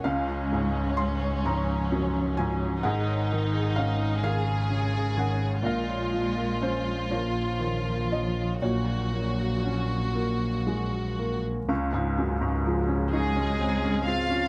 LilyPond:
<<
  \new Staff \with { instrumentName = "Vibraphone" } { \time 6/8 \key des \major \tempo 4. = 42 des'16 f'16 aes'16 des'16 des''16 r16 des'16 r16 f'16 des'16 f'16 f'16 | aes'16 des''16 r16 aes'16 ges''16 r16 aes'16 r16 des''16 aes'16 des''16 des''16 | bes'16 des''16 f''16 bes'16 aes''16 r16 bes'16 r16 des''16 bes'16 des''16 des''16 | ges'16 bes'16 des''16 ges'16 f''16 r16 ges'16 r16 bes'16 ges'16 bes'16 bes'16 |
des'16 f'16 f'16 des'16 aes'16 aes'16 des'16 des''16 des''16 des'16 aes'16 des''16 | }
  \new Staff \with { instrumentName = "Violin section" } { \time 6/8 \key des \major des'2. | ees'4. aes'4. | f'2. | ges'2. |
r4. aes'4 f''8 | }
  \new Staff \with { instrumentName = "Felt piano" } { \time 6/8 \key des \major f''4 c'''8 bes''4 aes''8 | ges''4 f''8 f''4 ges''8 | f''4 c''8 des''4 ees''8 | des''4. r4. |
r2. | }
  \new Staff \with { instrumentName = "Felt piano" } { \clef bass \time 6/8 \key des \major des,8 aes,8 des'8 aes,8 ges,8 aes,8 | aes,8 ees8 des'8 ees8 des8 ees8 | bes,8 f8 des'8 f8 ees8 f8 | bes,8 bes8 des'8 bes8 aes8 bes8 |
des,16 aes,16 ges,16 aes,16 f16 des'16 ees'16 des'16 c'16 des'16 c'16 des'16 | }
  \new Staff \with { instrumentName = "Cello" } { \clef bass \time 6/8 \key des \major aes4. f4. | ees4. des4. | aes4. f4. | ges2. |
r4. aes4 f'8 | }
  \new Staff \with { instrumentName = "Double bass" } { \clef bass \time 6/8 \key des \major des,2. | aes,,2. | bes,,2.~ | bes,,2. |
des,2. | }
>>